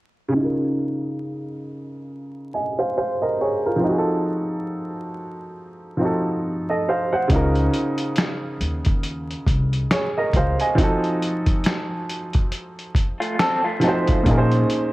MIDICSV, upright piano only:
0, 0, Header, 1, 2, 480
1, 0, Start_track
1, 0, Key_signature, -5, "major"
1, 0, Tempo, 869565
1, 192, Time_signature, 4, 2, 24, 8
1, 8240, End_track
2, 0, Start_track
2, 0, Title_t, "Upright piano"
2, 0, Program_c, 0, 0
2, 157, Note_on_c, 0, 49, 68
2, 179, Note_on_c, 0, 61, 58
2, 200, Note_on_c, 0, 63, 62
2, 222, Note_on_c, 0, 65, 62
2, 245, Note_on_c, 0, 70, 76
2, 302, Control_c, 0, 64, 127
2, 1385, Note_off_c, 0, 65, 0
2, 1396, Note_off_c, 0, 70, 0
2, 1402, Note_on_c, 0, 80, 55
2, 1406, Note_on_c, 0, 75, 42
2, 1527, Note_off_c, 0, 80, 0
2, 1529, Note_off_c, 0, 75, 0
2, 1538, Note_on_c, 0, 77, 61
2, 1539, Note_on_c, 0, 72, 54
2, 1631, Note_off_c, 0, 77, 0
2, 1632, Note_off_c, 0, 72, 0
2, 1641, Note_on_c, 0, 77, 66
2, 1644, Note_on_c, 0, 72, 60
2, 1767, Note_off_c, 0, 77, 0
2, 1768, Note_off_c, 0, 72, 0
2, 1776, Note_on_c, 0, 75, 63
2, 1781, Note_on_c, 0, 70, 53
2, 1870, Note_off_c, 0, 75, 0
2, 1873, Note_off_c, 0, 70, 0
2, 1881, Note_on_c, 0, 73, 57
2, 1882, Note_on_c, 0, 68, 54
2, 2007, Note_off_c, 0, 68, 0
2, 2007, Note_off_c, 0, 73, 0
2, 2020, Note_on_c, 0, 70, 56
2, 2023, Note_on_c, 0, 65, 46
2, 2072, Note_off_c, 0, 49, 0
2, 2076, Note_on_c, 0, 53, 71
2, 2083, Note_off_c, 0, 61, 0
2, 2094, Note_off_c, 0, 63, 0
2, 2096, Note_on_c, 0, 60, 63
2, 2119, Note_on_c, 0, 63, 64
2, 2120, Control_c, 0, 64, 0
2, 2141, Note_on_c, 0, 66, 66
2, 2164, Note_on_c, 0, 68, 61
2, 2179, Note_off_c, 0, 68, 0
2, 2198, Note_on_c, 0, 69, 76
2, 2210, Control_c, 0, 64, 127
2, 2243, Note_off_c, 0, 70, 0
2, 2244, Note_off_c, 0, 65, 0
2, 3272, Note_off_c, 0, 53, 0
2, 3282, Note_off_c, 0, 60, 0
2, 3293, Note_off_c, 0, 63, 0
2, 3295, Note_on_c, 0, 53, 49
2, 3304, Note_off_c, 0, 66, 0
2, 3307, Note_on_c, 0, 60, 46
2, 3318, Note_on_c, 0, 63, 43
2, 3330, Note_on_c, 0, 66, 44
2, 3332, Note_off_c, 0, 69, 0
2, 3341, Note_on_c, 0, 69, 54
2, 3566, Note_off_c, 0, 69, 0
2, 3696, Note_on_c, 0, 75, 57
2, 3698, Note_on_c, 0, 69, 49
2, 3790, Note_off_c, 0, 75, 0
2, 3792, Note_off_c, 0, 69, 0
2, 3800, Note_on_c, 0, 77, 63
2, 3802, Note_on_c, 0, 72, 53
2, 3926, Note_off_c, 0, 77, 0
2, 3927, Note_off_c, 0, 72, 0
2, 3932, Note_on_c, 0, 78, 65
2, 3935, Note_on_c, 0, 72, 54
2, 4015, Note_on_c, 0, 49, 75
2, 4023, Note_off_c, 0, 53, 0
2, 4025, Note_on_c, 0, 61, 74
2, 4028, Note_off_c, 0, 63, 0
2, 4029, Note_off_c, 0, 60, 0
2, 4036, Note_on_c, 0, 63, 75
2, 4039, Control_c, 0, 64, 0
2, 4041, Note_off_c, 0, 66, 0
2, 4047, Note_on_c, 0, 65, 69
2, 4059, Note_on_c, 0, 70, 89
2, 4133, Control_c, 0, 64, 127
2, 4158, Note_off_c, 0, 78, 0
2, 4160, Note_off_c, 0, 72, 0
2, 4624, Note_off_c, 0, 49, 0
2, 4629, Note_off_c, 0, 61, 0
2, 4635, Note_off_c, 0, 63, 0
2, 4640, Note_off_c, 0, 65, 0
2, 4646, Note_off_c, 0, 70, 0
2, 5477, Note_on_c, 0, 73, 62
2, 5482, Note_on_c, 0, 68, 53
2, 5605, Note_off_c, 0, 73, 0
2, 5607, Note_off_c, 0, 68, 0
2, 5618, Note_on_c, 0, 75, 66
2, 5622, Note_on_c, 0, 70, 50
2, 5711, Note_off_c, 0, 75, 0
2, 5713, Note_off_c, 0, 70, 0
2, 5719, Note_on_c, 0, 77, 65
2, 5723, Note_on_c, 0, 72, 55
2, 5846, Note_off_c, 0, 77, 0
2, 5848, Note_off_c, 0, 72, 0
2, 5855, Note_on_c, 0, 80, 66
2, 5859, Note_on_c, 0, 75, 55
2, 5935, Note_on_c, 0, 53, 85
2, 5948, Note_on_c, 0, 60, 75
2, 5956, Note_on_c, 0, 63, 76
2, 5959, Control_c, 0, 64, 0
2, 5967, Note_on_c, 0, 66, 76
2, 5980, Note_on_c, 0, 69, 90
2, 6044, Control_c, 0, 64, 127
2, 6080, Note_off_c, 0, 80, 0
2, 6082, Note_off_c, 0, 75, 0
2, 6544, Note_off_c, 0, 53, 0
2, 6551, Note_off_c, 0, 60, 0
2, 6555, Note_off_c, 0, 63, 0
2, 6560, Note_off_c, 0, 66, 0
2, 6567, Note_off_c, 0, 69, 0
2, 7617, Note_on_c, 0, 53, 78
2, 7631, Note_on_c, 0, 60, 73
2, 7641, Note_on_c, 0, 63, 70
2, 7651, Note_on_c, 0, 66, 74
2, 7661, Note_on_c, 0, 72, 81
2, 7784, Note_off_c, 0, 53, 0
2, 7791, Note_off_c, 0, 60, 0
2, 7796, Note_off_c, 0, 63, 0
2, 7801, Note_off_c, 0, 66, 0
2, 7806, Note_off_c, 0, 72, 0
2, 7857, Note_on_c, 0, 46, 80
2, 7866, Note_on_c, 0, 58, 74
2, 7874, Note_on_c, 0, 61, 74
2, 7879, Control_c, 0, 64, 0
2, 7882, Note_on_c, 0, 63, 81
2, 7891, Note_on_c, 0, 68, 72
2, 7899, Note_on_c, 0, 70, 74
2, 7926, Note_off_c, 0, 70, 0
2, 7936, Note_on_c, 0, 72, 90
2, 7986, Control_c, 0, 64, 127
2, 8240, Note_off_c, 0, 46, 0
2, 8240, Note_off_c, 0, 58, 0
2, 8240, Note_off_c, 0, 61, 0
2, 8240, Note_off_c, 0, 63, 0
2, 8240, Note_off_c, 0, 68, 0
2, 8240, Note_off_c, 0, 72, 0
2, 8240, End_track
0, 0, End_of_file